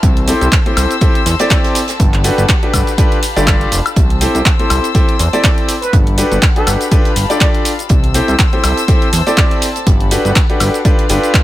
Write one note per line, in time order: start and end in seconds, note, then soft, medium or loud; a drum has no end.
0.00 0.34 C2 loud
0.00 1.98 C5 medium
0.00 6.88 A5 medium
0.00 1.98 E6 medium
0.00 kick loud
0.00 closed hi-hat medium
0.00 shaker soft
0.17 closed hi-hat soft
0.28 0.46 C4 medium
0.28 0.46 E4 medium
0.28 0.46 G4 medium
0.28 0.46 A4 medium
0.28 0.46 C5 loud
0.28 closed hi-hat medium
0.28 open hi-hat loud
0.28 shaker medium
0.41 0.48 C2 medium
0.41 closed hi-hat soft
0.41 shaker soft
0.52 kick loud
0.52 snare loud
0.52 clap loud
0.52 closed hi-hat medium
0.52 shaker soft
0.66 0.93 C4 medium
0.66 0.93 E4 medium
0.66 0.93 G4 medium
0.66 0.93 A4 medium
0.66 0.93 C5 medium
0.66 closed hi-hat soft
0.77 0.86 C2 loud
0.77 closed hi-hat medium
0.77 open hi-hat loud
0.77 high woodblock medium
0.77 shaker medium
0.90 closed hi-hat soft
0.90 shaker soft
1.01 1.19 C4 loud
1.01 1.19 E4 medium
1.01 1.19 G4 medium
1.01 1.19 A4 medium
1.01 1.19 C5 loud
1.01 kick loud
1.01 closed hi-hat medium
1.01 closed hi-hat loud
1.01 shaker soft
1.15 closed hi-hat soft
1.26 1.35 E2 medium
1.26 snare loud
1.26 closed hi-hat medium
1.26 open hi-hat loud
1.26 shaker medium
1.39 1.49 C4 medium
1.39 1.49 E4 medium
1.39 1.49 G4 medium
1.39 1.49 A4 medium
1.39 1.49 D5 loud
1.39 snare loud
1.39 closed hi-hat medium
1.39 closed hi-hat soft
1.39 shaker soft
1.50 1.78 C4 loud
1.50 1.78 E4 medium
1.50 1.78 G4 medium
1.50 1.78 A4 medium
1.50 kick loud
1.50 snare loud
1.50 clap loud
1.50 closed hi-hat medium
1.50 shaker soft
1.64 snare loud
1.64 closed hi-hat medium
1.64 closed hi-hat soft
1.75 snare loud
1.75 closed hi-hat medium
1.75 open hi-hat loud
1.75 shaker medium
1.88 snare loud
1.88 closed hi-hat medium
1.88 closed hi-hat soft
1.88 shaker soft
2.00 2.30 G1 loud
2.00 3.95 G4 medium
2.00 2.97 F#5 medium
2.00 3.94 B5 loud
2.00 kick loud
2.00 closed hi-hat loud
2.00 closed hi-hat medium
2.00 shaker soft
2.14 clap soft
2.14 closed hi-hat soft
2.24 2.42 D4 medium
2.24 2.42 F#4 medium
2.24 2.42 G4 medium
2.24 2.42 A4 medium
2.24 2.42 B4 loud
2.24 closed hi-hat medium
2.24 open hi-hat loud
2.24 shaker medium
2.38 2.45 G1 medium
2.38 closed hi-hat soft
2.38 shaker soft
2.48 kick loud
2.48 snare loud
2.48 clap loud
2.48 closed hi-hat medium
2.48 closed hi-hat loud
2.48 shaker soft
2.63 2.90 D4 medium
2.63 2.90 F#4 medium
2.63 2.90 G4 medium
2.63 2.90 A4 medium
2.63 2.90 B4 medium
2.63 closed hi-hat soft
2.73 2.82 G1 loud
2.73 kick medium
2.73 snare soft
2.73 closed hi-hat medium
2.73 open hi-hat loud
2.73 high woodblock medium
2.73 shaker medium
2.87 snare soft
2.87 closed hi-hat soft
2.87 shaker soft
2.98 3.16 D4 medium
2.98 3.16 F4 medium
2.98 3.16 G4 medium
2.98 3.16 A4 medium
2.98 3.16 B4 loud
2.98 3.95 F5 medium
2.98 kick loud
2.98 closed hi-hat loud
2.98 closed hi-hat medium
2.98 shaker soft
3.12 closed hi-hat soft
3.23 closed hi-hat medium
3.23 open hi-hat loud
3.23 shaker medium
3.36 3.66 G1 medium
3.36 3.46 D4 medium
3.36 3.46 F4 medium
3.36 3.46 G4 medium
3.36 3.46 A4 medium
3.36 3.46 D5 loud
3.36 closed hi-hat soft
3.36 shaker soft
3.47 3.75 D4 medium
3.47 3.75 F4 medium
3.47 3.75 G4 medium
3.47 3.75 A4 medium
3.47 3.75 D5 loud
3.47 kick loud
3.47 snare loud
3.47 clap loud
3.47 closed hi-hat medium
3.47 closed hi-hat loud
3.47 high woodblock medium
3.47 shaker soft
3.61 closed hi-hat soft
3.72 3.81 F1 medium
3.72 closed hi-hat medium
3.72 open hi-hat loud
3.72 shaker medium
3.86 closed hi-hat soft
3.86 high woodblock medium
3.86 shaker soft
3.96 4.27 C2 loud
3.96 5.91 C5 medium
3.96 5.91 E6 medium
3.96 kick loud
3.96 closed hi-hat medium
3.96 shaker soft
4.10 closed hi-hat soft
4.21 4.39 C4 medium
4.21 4.39 E4 medium
4.21 4.39 G4 medium
4.21 4.39 A4 medium
4.21 4.39 C5 medium
4.21 closed hi-hat medium
4.21 open hi-hat loud
4.21 shaker medium
4.35 4.42 C2 medium
4.35 closed hi-hat soft
4.35 shaker soft
4.45 kick loud
4.45 snare loud
4.45 clap loud
4.45 closed hi-hat loud
4.45 shaker soft
4.59 4.86 C4 medium
4.59 4.86 E4 medium
4.59 4.86 G4 medium
4.59 4.86 A4 medium
4.59 4.86 C5 medium
4.59 closed hi-hat soft
4.70 4.79 C2 loud
4.70 closed hi-hat medium
4.70 open hi-hat loud
4.70 high woodblock medium
4.70 shaker medium
4.84 closed hi-hat soft
4.84 shaker soft
4.95 5.13 C4 medium
4.95 5.13 E4 medium
4.95 5.13 G4 medium
4.95 5.13 A4 medium
4.95 5.13 C5 loud
4.95 kick loud
4.95 closed hi-hat loud
4.95 closed hi-hat medium
4.95 shaker soft
5.09 closed hi-hat soft
5.19 5.28 E2 medium
5.19 closed hi-hat medium
5.19 open hi-hat loud
5.19 shaker medium
5.33 5.42 C4 medium
5.33 5.42 E4 medium
5.33 5.42 G4 medium
5.33 5.42 A4 medium
5.33 5.42 D5 loud
5.33 closed hi-hat soft
5.33 shaker soft
5.44 5.72 C4 medium
5.44 5.72 E4 medium
5.44 5.72 A4 medium
5.44 kick loud
5.44 snare loud
5.44 clap loud
5.44 closed hi-hat loud
5.44 closed hi-hat medium
5.44 shaker soft
5.58 closed hi-hat soft
5.69 snare soft
5.69 closed hi-hat medium
5.69 open hi-hat loud
5.69 shaker medium
5.82 5.95 B4 medium
5.82 closed hi-hat soft
5.82 shaker soft
5.93 6.24 G1 loud
5.93 7.88 G4 medium
5.93 6.91 F#5 medium
5.93 7.88 B5 medium
5.93 kick loud
5.93 closed hi-hat medium
5.93 shaker soft
6.07 closed hi-hat soft
6.18 6.36 D4 medium
6.18 6.36 F#4 medium
6.18 6.36 G4 medium
6.18 6.36 A4 medium
6.18 6.36 B4 loud
6.18 closed hi-hat medium
6.18 open hi-hat loud
6.18 shaker medium
6.32 6.39 G1 medium
6.32 closed hi-hat soft
6.32 shaker soft
6.42 kick loud
6.42 snare loud
6.42 clap loud
6.42 closed hi-hat medium
6.42 closed hi-hat loud
6.42 shaker soft
6.56 6.83 D4 medium
6.56 6.83 F#4 medium
6.56 6.83 G4 medium
6.56 6.83 A4 medium
6.56 6.68 A4 loud
6.56 6.83 B4 medium
6.56 closed hi-hat soft
6.67 6.76 G1 loud
6.67 snare soft
6.67 closed hi-hat medium
6.67 open hi-hat loud
6.67 high woodblock medium
6.67 shaker medium
6.81 snare medium
6.81 closed hi-hat soft
6.81 shaker soft
6.92 7.09 D4 medium
6.92 7.09 F4 medium
6.92 7.09 G4 medium
6.92 7.09 A4 medium
6.92 7.09 B4 loud
6.92 7.89 F5 medium
6.92 7.89 A5 medium
6.92 kick loud
6.92 closed hi-hat medium
6.92 shaker soft
7.05 closed hi-hat soft
7.16 7.25 G1 medium
7.16 closed hi-hat medium
7.16 open hi-hat loud
7.16 shaker medium
7.30 7.39 D4 medium
7.30 7.39 F4 medium
7.30 7.39 G4 medium
7.30 7.39 A4 medium
7.30 7.39 D5 loud
7.30 7.37 D5 medium
7.30 closed hi-hat soft
7.30 shaker soft
7.41 7.68 D4 loud
7.41 7.68 F4 medium
7.41 7.68 G4 medium
7.41 7.68 A4 medium
7.41 7.68 D5 loud
7.41 7.50 D5 medium
7.41 kick loud
7.41 snare loud
7.41 clap loud
7.41 closed hi-hat medium
7.41 shaker soft
7.54 closed hi-hat soft
7.65 closed hi-hat medium
7.65 open hi-hat loud
7.65 shaker medium
7.79 closed hi-hat soft
7.79 shaker soft
7.89 8.21 C2 loud
7.89 9.85 C5 medium
7.89 10.82 A5 medium
7.89 9.85 E6 loud
7.89 kick loud
7.89 closed hi-hat medium
7.89 shaker soft
8.04 closed hi-hat soft
8.14 8.32 C4 medium
8.14 8.32 E4 medium
8.14 8.32 G4 medium
8.14 8.32 A4 medium
8.14 8.32 C5 loud
8.14 closed hi-hat medium
8.14 open hi-hat loud
8.14 shaker medium
8.28 8.35 C2 medium
8.28 closed hi-hat soft
8.28 shaker soft
8.39 kick loud
8.39 snare loud
8.39 clap loud
8.39 closed hi-hat medium
8.39 shaker soft
8.53 8.80 C4 medium
8.53 8.80 E4 medium
8.53 8.80 G4 medium
8.53 8.80 A4 medium
8.53 8.80 C5 medium
8.53 closed hi-hat soft
8.64 8.73 C2 loud
8.64 closed hi-hat medium
8.64 open hi-hat loud
8.64 high woodblock medium
8.64 shaker medium
8.77 closed hi-hat soft
8.77 shaker soft
8.88 9.06 C4 loud
8.88 9.06 E4 medium
8.88 9.06 G4 medium
8.88 9.06 A4 medium
8.88 9.06 C5 loud
8.88 kick loud
8.88 closed hi-hat medium
8.88 shaker soft
9.02 closed hi-hat soft
9.13 9.22 E2 medium
9.13 closed hi-hat medium
9.13 open hi-hat loud
9.13 shaker medium
9.27 9.36 C4 medium
9.27 9.36 E4 medium
9.27 9.36 G4 medium
9.27 9.36 A4 medium
9.27 9.36 D5 loud
9.27 closed hi-hat soft
9.27 shaker soft
9.37 9.65 C4 loud
9.37 9.65 E4 medium
9.37 9.65 G4 medium
9.37 9.65 A4 medium
9.37 kick loud
9.37 snare loud
9.37 clap loud
9.37 closed hi-hat medium
9.37 shaker soft
9.51 closed hi-hat soft
9.62 snare medium
9.62 closed hi-hat medium
9.62 open hi-hat loud
9.62 shaker medium
9.76 closed hi-hat soft
9.76 shaker soft
9.87 10.17 G1 loud
9.87 11.43 G4 medium
9.87 10.84 F#5 medium
9.87 10.84 B5 medium
9.87 kick loud
9.87 closed hi-hat medium
9.87 shaker soft
10.00 closed hi-hat soft
10.11 10.29 D4 medium
10.11 10.29 F#4 medium
10.11 10.29 G4 medium
10.11 10.29 A4 medium
10.11 10.29 B4 medium
10.11 closed hi-hat medium
10.11 open hi-hat loud
10.11 shaker medium
10.25 10.32 G1 medium
10.25 closed hi-hat soft
10.25 shaker soft
10.35 kick loud
10.35 snare loud
10.35 clap loud
10.35 closed hi-hat medium
10.35 shaker soft
10.50 10.77 D4 medium
10.50 10.77 F#4 medium
10.50 10.76 G4 medium
10.50 10.76 A4 medium
10.50 10.77 B4 medium
10.50 closed hi-hat soft
10.60 10.69 G1 loud
10.60 snare soft
10.60 closed hi-hat medium
10.60 open hi-hat loud
10.60 high woodblock medium
10.60 shaker medium
10.74 snare soft
10.74 closed hi-hat soft
10.74 shaker soft
10.85 11.03 D4 medium
10.85 11.03 F4 medium
10.85 11.03 G4 medium
10.85 11.03 A4 medium
10.85 11.03 B4 loud
10.85 11.43 F5 medium
10.85 11.43 A5 medium
10.85 11.43 B5 medium
10.85 kick loud
10.85 closed hi-hat medium
10.85 shaker soft
10.99 closed hi-hat soft
11.09 11.19 G1 medium
11.09 11.43 D4 loud
11.09 11.43 F4 medium
11.09 11.43 G4 medium
11.09 11.43 A4 medium
11.09 11.43 B4 loud
11.09 closed hi-hat medium
11.09 open hi-hat loud
11.09 shaker medium
11.23 closed hi-hat soft
11.23 shaker soft
11.34 kick loud
11.34 snare loud
11.34 clap loud
11.34 closed hi-hat medium
11.34 shaker soft